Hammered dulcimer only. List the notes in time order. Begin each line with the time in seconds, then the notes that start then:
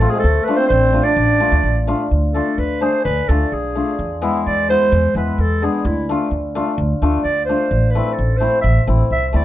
0.01 A3 C4 F4
0.48 A3 D4 F4
0.93 A3 D4 F4
1.40 A3 D4 F4
1.87 A3 D4 F4
2.34 A3 D4 F4
2.81 A3 D4 G#4
3.29 A3 D4 F4
3.75 A3 D4 F4
4.22 G#3 B3 E4
4.69 G#3 B3 E4
5.16 G#3 B3 E4
5.62 G#3 B3 D4
6.09 A3 D4 F4
6.55 A3 D4 F4
7.02 A3 D4 F4
7.49 A3 D4 F4
7.95 A3 C4 E4
8.40 A3 C4 E4
8.87 A3 C4 E4
9.33 A3 C4 E4